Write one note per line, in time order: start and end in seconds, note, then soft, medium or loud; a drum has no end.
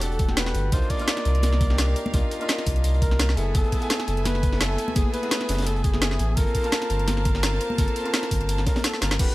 0.00 0.18 E1 loud
0.00 0.28 A3 loud
0.00 0.29 D4 medium
0.00 0.29 F#4 medium
0.00 0.30 G4 loud
0.00 0.69 A4 medium
0.00 0.39 A4 loud
0.00 0.69 F#5 medium
0.00 closed hi-hat medium
0.12 closed hi-hat soft
0.19 0.53 E1 medium
0.19 kick loud
0.19 closed hi-hat medium
0.28 0.70 A3 medium
0.28 0.70 D4 medium
0.28 0.71 F#4 medium
0.28 0.71 G4 medium
0.28 snare soft
0.28 high conga medium
0.37 0.74 B4 loud
0.37 snare loud
0.37 closed hi-hat loud
0.37 closed hi-hat medium
0.46 snare soft
0.55 0.71 G1 loud
0.55 closed hi-hat medium
0.72 0.81 C2 loud
0.72 0.97 A#3 medium
0.72 0.97 D4 medium
0.72 0.97 D#4 medium
0.72 0.98 F4 loud
0.72 3.35 A#4 medium
0.72 0.92 C5 loud
0.72 3.35 F5 loud
0.72 kick loud
0.72 closed hi-hat medium
0.82 closed hi-hat soft
0.90 2.31 D5 loud
0.90 kick medium
0.90 closed hi-hat medium
0.90 open hi-hat medium
0.98 1.67 A#3 medium
0.98 1.68 D4 medium
0.98 1.69 D#4 medium
0.98 1.69 F4 loud
0.98 closed hi-hat soft
1.08 snare loud
1.08 closed hi-hat medium
1.08 closed hi-hat loud
1.17 snare medium
1.17 closed hi-hat soft
1.25 1.95 C2 loud
1.25 closed hi-hat medium
1.35 closed hi-hat soft
1.43 snare medium
1.43 closed hi-hat medium
1.43 high conga medium
1.53 snare soft
1.61 kick loud
1.61 closed hi-hat medium
1.69 2.11 A#3 medium
1.69 2.12 D4 medium
1.69 2.12 D#4 medium
1.69 2.12 G4 medium
1.69 snare medium
1.69 snare soft
1.78 snare loud
1.78 closed hi-hat loud
1.78 closed hi-hat medium
1.88 snare soft
1.96 closed hi-hat medium
2.06 high conga loud
2.13 2.22 C2 loud
2.13 2.38 A#3 medium
2.13 2.38 D4 medium
2.13 2.38 D#4 medium
2.13 2.39 F4 loud
2.13 kick loud
2.13 closed hi-hat medium
2.13 high conga medium
2.31 closed hi-hat medium
2.39 3.09 A#3 medium
2.39 3.09 D4 medium
2.39 3.10 D#4 medium
2.39 3.10 F4 loud
2.39 closed hi-hat soft
2.48 snare loud
2.48 closed hi-hat medium
2.58 snare soft
2.58 closed hi-hat soft
2.66 3.01 C2 loud
2.66 kick medium
2.66 closed hi-hat medium
2.66 open hi-hat medium
2.76 closed hi-hat soft
2.84 closed hi-hat medium
2.94 closed hi-hat soft
3.02 3.36 C2 medium
3.02 3.38 A#4 loud
3.02 kick loud
3.02 closed hi-hat medium
3.11 snare soft
3.11 high conga medium
3.19 snare loud
3.19 closed hi-hat medium
3.29 snare soft
3.29 snare medium
3.29 snare soft
3.37 3.53 F#1 loud
3.37 3.52 A3 medium
3.37 6.34 A3 medium
3.37 3.53 B3 medium
3.37 3.53 E4 medium
3.37 3.56 G#4 loud
3.37 3.53 A4 medium
3.37 6.34 B4 medium
3.37 6.34 E5 medium
3.37 6.34 G#5 medium
3.37 closed hi-hat medium
3.54 3.63 F#1 loud
3.54 3.79 A3 medium
3.54 3.79 B3 medium
3.54 3.80 E4 medium
3.54 3.80 G#4 loud
3.54 4.26 A4 loud
3.54 kick loud
3.54 closed hi-hat medium
3.64 closed hi-hat soft
3.72 kick medium
3.72 closed hi-hat medium
3.72 open hi-hat medium
3.81 4.50 A3 medium
3.81 4.50 B3 medium
3.81 4.51 E4 medium
3.81 4.51 G#5 loud
3.81 closed hi-hat soft
3.90 snare loud
3.90 closed hi-hat medium
4.00 snare soft
4.00 closed hi-hat soft
4.08 4.77 F#1 loud
4.08 closed hi-hat medium
4.17 closed hi-hat soft
4.25 4.62 B4 loud
4.25 snare medium
4.25 closed hi-hat medium
4.25 high conga medium
4.35 snare soft
4.43 kick loud
4.43 closed hi-hat medium
4.51 4.93 A3 medium
4.51 4.94 B3 medium
4.51 4.94 E4 medium
4.51 4.95 A4 medium
4.51 snare soft
4.60 4.97 A4 loud
4.60 snare loud
4.60 closed hi-hat medium
4.70 snare medium
4.78 closed hi-hat medium
4.88 high conga loud
4.95 5.04 F#1 loud
4.95 5.20 A3 medium
4.95 5.21 B3 medium
4.95 5.21 E4 medium
4.95 5.12 G#4 loud
4.95 5.21 G#4 loud
4.95 kick loud
4.95 closed hi-hat loud
4.95 closed hi-hat medium
4.95 high conga medium
5.13 5.68 B4 loud
5.13 closed hi-hat medium
5.22 5.91 A3 medium
5.22 5.92 B3 medium
5.22 5.92 E4 medium
5.22 5.92 G#4 loud
5.22 closed hi-hat soft
5.31 snare loud
5.31 closed hi-hat medium
5.41 snare soft
5.41 closed hi-hat soft
5.49 5.83 F#1 loud
5.49 snare medium
5.49 closed hi-hat medium
5.49 open hi-hat medium
5.54 snare medium
5.54 closed hi-hat medium
5.58 snare medium
5.58 closed hi-hat medium
5.58 closed hi-hat soft
5.62 snare medium
5.62 closed hi-hat medium
5.66 5.85 A4 loud
5.66 closed hi-hat loud
5.66 closed hi-hat medium
5.76 closed hi-hat soft
5.84 6.18 F#1 medium
5.84 6.38 G#4 loud
5.84 kick loud
5.84 closed hi-hat medium
5.92 6.34 A3 medium
5.92 6.35 B3 medium
5.92 6.35 E4 medium
5.92 6.36 G#4 medium
5.92 snare soft
5.92 high conga medium
6.02 snare loud
6.02 closed hi-hat medium
6.11 snare soft
6.19 6.36 A1 loud
6.19 closed hi-hat medium
6.36 6.46 G1 loud
6.36 6.61 A#3 medium
6.36 9.17 A#3 medium
6.36 6.62 C4 medium
6.36 6.62 F4 medium
6.36 6.62 A4 loud
6.36 8.66 A#4 loud
6.36 9.17 C5 medium
6.36 9.17 F5 medium
6.36 9.17 A5 loud
6.36 kick loud
6.36 closed hi-hat loud
6.36 closed hi-hat medium
6.46 closed hi-hat soft
6.55 kick medium
6.55 closed hi-hat medium
6.55 open hi-hat medium
6.63 7.32 A#3 loud
6.63 7.33 C4 medium
6.63 7.33 F4 medium
6.63 7.34 A5 loud
6.63 closed hi-hat soft
6.72 snare loud
6.72 closed hi-hat medium
6.82 snare soft
6.82 closed hi-hat soft
6.90 7.59 G1 loud
6.90 closed hi-hat medium
6.99 closed hi-hat soft
7.08 snare medium
7.08 closed hi-hat loud
7.08 closed hi-hat medium
7.08 high conga medium
7.17 snare soft
7.25 kick loud
7.25 closed hi-hat medium
7.34 7.76 A#3 medium
7.34 7.76 C4 medium
7.34 7.77 F4 medium
7.34 7.77 A#4 medium
7.34 snare medium
7.34 snare soft
7.43 snare loud
7.43 closed hi-hat loud
7.43 closed hi-hat medium
7.53 snare soft
7.61 closed hi-hat medium
7.70 high conga medium
7.78 7.87 G1 loud
7.78 8.02 A#3 medium
7.78 8.03 C4 medium
7.78 8.03 F4 medium
7.78 8.04 A4 loud
7.78 kick loud
7.78 closed hi-hat loud
7.78 high conga medium
7.88 closed hi-hat soft
7.96 closed hi-hat medium
8.04 8.73 A#3 loud
8.04 8.74 C4 medium
8.04 8.74 F4 medium
8.04 8.75 A5 loud
8.04 closed hi-hat soft
8.14 snare loud
8.14 closed hi-hat loud
8.14 closed hi-hat medium
8.23 snare soft
8.23 closed hi-hat soft
8.31 8.65 G1 loud
8.31 kick medium
8.31 closed hi-hat medium
8.31 open hi-hat medium
8.41 closed hi-hat soft
8.49 closed hi-hat loud
8.49 closed hi-hat medium
8.58 snare soft
8.58 closed hi-hat soft
8.66 8.86 A#4 medium
8.66 kick loud
8.66 snare medium
8.66 closed hi-hat medium
8.76 snare loud
8.76 snare soft
8.76 closed hi-hat medium
8.76 high conga medium
8.84 9.02 A4 medium
8.84 snare loud
8.84 closed hi-hat loud
8.84 closed hi-hat medium
8.94 snare soft
9.01 9.18 G1 medium
9.01 9.17 A#3 medium
9.01 9.17 C4 medium
9.01 9.18 F4 medium
9.01 9.19 A#4 medium
9.01 9.18 A#4 medium
9.01 snare medium
9.01 closed hi-hat medium
9.11 snare loud
9.19 9.28 E1 loud
9.19 9.35 A3 medium
9.19 9.35 D4 medium
9.19 9.35 F#4 medium
9.19 9.35 G4 loud
9.19 9.35 B4 loud
9.19 9.35 D5 medium
9.19 9.35 F#5 medium
9.19 9.35 A5 loud
9.19 kick loud
9.19 closed hi-hat loud
9.19 closed hi-hat medium
9.19 crash loud
9.29 closed hi-hat soft